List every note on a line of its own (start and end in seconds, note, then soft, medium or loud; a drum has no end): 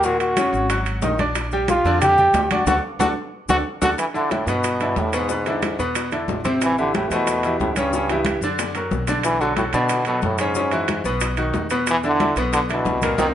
0.00 0.47 D#2 medium
0.00 high bongo medium
0.00 high conga soft
0.00 maracas medium
0.04 0.31 A#2 medium
0.04 0.31 A#3 medium
0.04 0.20 F#4 loud
0.04 0.31 A#4 medium
0.20 0.82 F#4 loud
0.20 high bongo soft
0.20 high conga soft
0.20 high timbale medium
0.20 maracas soft
0.37 0.64 C#3 medium
0.37 0.64 C#4 medium
0.37 0.64 C#5 medium
0.37 high bongo medium
0.37 high conga medium
0.37 high timbale medium
0.37 low timbale medium
0.37 maracas medium
0.53 0.99 G#1 medium
0.53 high bongo soft
0.53 high conga soft
0.53 maracas soft
0.70 0.97 F#3 medium
0.70 0.97 F#4 medium
0.70 0.97 F#5 medium
0.70 high bongo medium
0.70 high conga soft
0.70 high timbale medium
0.70 maracas medium
0.86 high conga soft
0.86 high timbale medium
0.86 maracas soft
1.02 1.79 A#1 medium
1.02 1.16 D#3 medium
1.02 1.17 D#4 medium
1.02 1.17 D#5 medium
1.02 high bongo medium
1.02 low bongo medium
1.02 high conga medium
1.02 low timbale medium
1.02 maracas medium
1.19 1.46 D4 medium
1.19 1.47 D5 medium
1.19 1.47 D6 medium
1.19 high bongo soft
1.19 high conga medium
1.19 high timbale medium
1.19 maracas soft
1.35 high bongo medium
1.35 high conga soft
1.35 high timbale medium
1.35 maracas medium
1.51 1.79 G3 medium
1.51 1.79 G4 medium
1.51 1.80 G5 medium
1.51 high bongo soft
1.51 high conga soft
1.51 maracas soft
1.68 2.00 F4 medium
1.68 high bongo medium
1.68 high conga loud
1.68 high timbale medium
1.68 low timbale medium
1.68 maracas medium
1.85 2.30 F2 medium
1.85 2.12 D3 medium
1.85 2.12 D4 medium
1.85 2.13 D5 medium
1.85 high conga soft
1.85 maracas soft
2.02 2.41 G4 loud
2.02 high bongo medium
2.02 high conga soft
2.02 low conga medium
2.02 high timbale medium
2.02 maracas medium
2.18 2.45 G3 medium
2.18 2.45 G4 medium
2.18 2.45 G5 medium
2.18 high bongo soft
2.18 high conga soft
2.18 low conga medium
2.18 maracas soft
2.33 2.64 D2 medium
2.33 high bongo medium
2.33 low bongo medium
2.33 high conga medium
2.33 high timbale medium
2.33 low timbale medium
2.33 maracas medium
2.43 2.52 G4 medium
2.50 2.65 D4 medium
2.50 2.67 F#4 medium
2.50 2.65 D5 medium
2.50 2.65 D6 medium
2.50 high conga medium
2.50 high timbale loud
2.50 maracas soft
2.66 2.79 D2 medium
2.66 2.78 D4 medium
2.66 2.75 F#4 medium
2.66 2.78 F#4 medium
2.66 2.78 A4 medium
2.66 low bongo loud
2.66 high conga loud
2.66 high timbale medium
2.66 maracas loud
2.99 3.12 D2 loud
2.99 3.10 D4 loud
2.99 3.08 F#4 medium
2.99 3.10 F#4 medium
2.99 3.10 A4 loud
2.99 low bongo loud
2.99 high conga loud
2.99 high timbale loud
2.99 maracas loud
3.49 3.61 D2 medium
3.49 3.60 D4 medium
3.49 3.57 F#4 loud
3.49 3.60 F#4 medium
3.49 3.60 A4 loud
3.49 low bongo loud
3.49 high conga medium
3.49 high timbale loud
3.49 maracas loud
3.82 3.94 D2 loud
3.82 3.92 D4 loud
3.82 3.92 F#4 loud
3.82 3.90 F#4 loud
3.82 3.92 A4 loud
3.82 low bongo loud
3.82 high conga loud
3.82 high timbale medium
3.82 maracas loud
3.98 4.06 E3 loud
3.98 high bongo medium
3.98 high conga soft
3.98 high timbale medium
3.98 maracas medium
4.14 4.28 D3 medium
4.14 4.33 D3 medium
4.14 4.28 D4 medium
4.14 4.28 E4 medium
4.14 high conga soft
4.14 maracas soft
4.31 4.50 A2 medium
4.31 4.45 D3 medium
4.31 4.45 D4 medium
4.31 4.45 E4 medium
4.31 high bongo medium
4.31 high conga medium
4.31 high timbale medium
4.31 maracas soft
4.47 4.93 G2 medium
4.47 4.75 B2 medium
4.47 5.00 B2 loud
4.47 4.75 B3 medium
4.47 4.75 B4 medium
4.47 high conga soft
4.47 high timbale medium
4.47 maracas medium
4.64 high bongo medium
4.64 high conga soft
4.64 high timbale medium
4.64 maracas medium
4.80 5.08 D3 medium
4.80 5.08 D4 medium
4.80 5.08 E4 medium
4.80 high conga soft
4.80 high timbale medium
4.80 maracas soft
4.96 5.73 E2 medium
4.96 5.17 A2 medium
4.96 high bongo medium
4.96 low bongo medium
4.96 high conga medium
4.96 low timbale medium
4.96 maracas soft
5.13 5.80 G#2 medium
5.13 5.27 B2 medium
5.13 5.27 B3 medium
5.13 5.27 B4 medium
5.13 high timbale medium
5.13 maracas medium
5.29 5.43 B2 medium
5.29 5.44 B3 medium
5.29 5.44 B4 medium
5.29 high bongo medium
5.29 high conga soft
5.29 maracas medium
5.46 5.74 D3 medium
5.46 5.74 D4 medium
5.46 5.74 E4 medium
5.46 high bongo soft
5.46 high conga soft
5.46 high timbale medium
5.46 maracas soft
5.62 high bongo medium
5.62 high conga medium
5.62 high timbale medium
5.62 maracas soft
5.79 6.25 E2 medium
5.79 6.06 B2 medium
5.79 6.06 B3 medium
5.79 6.06 B4 medium
5.79 high conga soft
5.79 maracas medium
5.95 high bongo medium
5.95 high conga soft
5.95 high timbale medium
5.95 maracas medium
6.11 6.39 D3 medium
6.11 6.39 D4 medium
6.11 6.39 E4 medium
6.11 high bongo soft
6.11 high conga soft
6.11 high timbale medium
6.11 maracas soft
6.28 7.05 A1 medium
6.28 high bongo medium
6.28 low bongo medium
6.28 high conga medium
6.28 low timbale medium
6.28 maracas soft
6.45 6.72 C3 medium
6.45 6.72 C4 medium
6.45 6.72 C5 medium
6.45 high bongo soft
6.45 high conga medium
6.45 high timbale medium
6.45 maracas medium
6.61 6.78 E3 loud
6.61 high bongo medium
6.61 high conga soft
6.61 high timbale medium
6.61 maracas medium
6.78 6.94 D3 loud
6.78 6.92 E3 medium
6.78 6.92 E4 medium
6.78 6.92 G4 medium
6.78 high conga soft
6.78 maracas soft
6.94 7.13 A2 medium
6.94 7.09 E3 medium
6.94 7.09 E4 medium
6.94 7.09 G4 medium
6.94 high bongo medium
6.94 high conga medium
6.94 high timbale medium
6.94 maracas soft
7.10 7.56 E2 medium
7.10 7.59 B2 loud
7.10 7.38 E3 medium
7.10 7.39 A3 medium
7.10 7.39 C5 medium
7.10 high conga soft
7.10 high timbale medium
7.10 maracas medium
7.27 high bongo medium
7.27 high conga soft
7.27 high timbale medium
7.27 maracas medium
7.43 7.71 E3 medium
7.43 7.72 E4 medium
7.43 7.72 G4 medium
7.43 high conga soft
7.43 high timbale medium
7.43 maracas soft
7.60 8.36 C#2 medium
7.60 7.78 A2 medium
7.60 high bongo medium
7.60 low bongo medium
7.60 high conga medium
7.60 maracas soft
7.76 8.42 G2 medium
7.76 7.90 C#3 medium
7.76 7.90 C#4 medium
7.76 7.91 C#5 medium
7.76 high conga medium
7.76 high timbale medium
7.76 maracas medium
7.93 8.07 C#3 medium
7.93 8.08 C#4 medium
7.93 8.08 C#5 medium
7.93 high bongo medium
7.93 high conga soft
7.93 maracas medium
8.09 8.37 E3 medium
8.09 8.38 E4 medium
8.09 8.38 G4 medium
8.09 high bongo medium
8.09 high conga soft
8.09 high timbale medium
8.09 maracas soft
8.25 high conga loud
8.25 high timbale medium
8.25 maracas soft
8.41 8.88 F#2 medium
8.41 8.70 D3 medium
8.41 8.70 D4 medium
8.41 8.70 D5 medium
8.41 high conga soft
8.41 maracas medium
8.58 low bongo medium
8.58 high conga soft
8.58 high timbale medium
8.58 maracas medium
8.74 9.03 F#3 medium
8.74 9.03 F#4 medium
8.74 9.03 A#4 medium
8.74 low bongo medium
8.74 high conga soft
8.74 high timbale medium
8.74 maracas soft
8.91 9.68 B1 medium
8.91 low bongo loud
8.91 high conga medium
8.91 maracas soft
9.07 9.35 D3 medium
9.07 9.35 D4 medium
9.07 9.36 D5 medium
9.07 low bongo loud
9.07 high timbale medium
9.07 maracas medium
9.23 9.42 E3 loud
9.23 high bongo medium
9.23 high conga soft
9.23 high timbale medium
9.23 maracas medium
9.40 9.56 D3 medium
9.40 9.54 F#3 medium
9.40 9.55 F#4 medium
9.40 9.55 A4 medium
9.40 high conga soft
9.40 maracas soft
9.57 9.64 A2 medium
9.57 9.71 F#3 medium
9.57 9.71 F#4 medium
9.57 9.71 A4 medium
9.57 high bongo medium
9.57 high conga medium
9.57 high timbale medium
9.57 maracas soft
9.73 10.19 B2 medium
9.73 10.04 B2 loud
9.73 10.01 D3 medium
9.73 10.01 D4 medium
9.73 10.01 D5 medium
9.73 high conga soft
9.73 high timbale medium
9.73 maracas medium
9.89 high bongo medium
9.89 high conga soft
9.89 high timbale medium
9.89 maracas medium
10.05 10.22 B2 medium
10.05 10.34 F#3 medium
10.05 10.34 F#4 medium
10.05 10.34 A4 medium
10.05 high conga soft
10.05 high timbale medium
10.05 maracas soft
10.22 10.99 F#2 medium
10.22 10.41 A2 medium
10.22 high bongo medium
10.22 low bongo medium
10.22 high conga medium
10.22 maracas soft
10.38 11.05 G#2 medium
10.38 10.53 C#3 medium
10.38 10.54 C#4 medium
10.38 10.54 C#5 medium
10.38 high timbale medium
10.38 maracas medium
10.55 10.69 C#3 medium
10.55 10.69 C#4 medium
10.55 10.70 C#5 medium
10.55 high bongo medium
10.55 high conga soft
10.55 maracas medium
10.71 10.99 E3 medium
10.71 10.99 E4 medium
10.71 10.99 F#4 medium
10.71 high bongo soft
10.71 high conga soft
10.71 high timbale medium
10.71 maracas soft
10.88 high bongo medium
10.88 high conga medium
10.88 high timbale medium
10.88 maracas soft
11.04 11.51 B1 medium
11.04 11.32 B2 medium
11.04 11.32 B3 medium
11.04 11.33 B4 medium
11.04 high conga soft
11.04 maracas medium
11.20 high bongo medium
11.20 high conga soft
11.20 high timbale medium
11.20 maracas medium
11.37 11.65 D#3 medium
11.37 11.65 D#4 medium
11.37 11.65 F#4 medium
11.37 high bongo soft
11.37 high conga soft
11.37 high timbale medium
11.37 maracas soft
11.53 12.30 E2 medium
11.53 high bongo medium
11.53 low bongo medium
11.53 high conga medium
11.53 low timbale medium
11.53 maracas soft
11.70 11.98 B2 medium
11.70 11.98 B3 medium
11.70 11.98 B4 medium
11.70 high bongo soft
11.70 high timbale medium
11.70 maracas medium
11.87 11.97 E3 loud
11.87 high bongo medium
11.87 high conga soft
11.87 high timbale medium
11.87 maracas medium
12.03 12.17 D3 medium
12.03 12.36 D3 loud
12.03 12.18 D4 medium
12.03 12.18 E4 medium
12.03 high conga soft
12.03 maracas soft
12.20 12.34 D3 medium
12.20 12.34 D4 medium
12.20 12.34 E4 medium
12.20 high bongo medium
12.20 high conga loud
12.20 high timbale medium
12.20 maracas soft
12.36 12.82 B1 loud
12.36 12.64 B2 medium
12.36 12.64 B3 medium
12.36 12.64 B4 medium
12.36 high conga soft
12.36 high timbale medium
12.36 maracas medium
12.53 12.61 D3 loud
12.53 high bongo medium
12.53 high conga soft
12.53 high timbale medium
12.53 maracas medium
12.69 13.17 B2 medium
12.69 12.97 D3 medium
12.69 12.96 D4 medium
12.69 12.97 E4 medium
12.69 high conga soft
12.69 high timbale medium
12.69 maracas soft
12.85 13.16 C2 medium
12.85 high bongo medium
12.85 low bongo medium
12.85 high conga medium
12.85 maracas soft
13.02 13.16 A#2 medium
13.02 13.16 A#3 medium
13.02 13.16 A#4 medium
13.02 high conga medium
13.02 high timbale medium
13.02 maracas medium
13.18 13.31 C2 medium
13.18 13.26 D#3 loud
13.18 13.29 A#3 medium
13.18 13.29 C4 medium
13.18 13.29 D#4 medium
13.18 high bongo loud
13.18 high conga loud
13.18 high timbale loud
13.18 maracas loud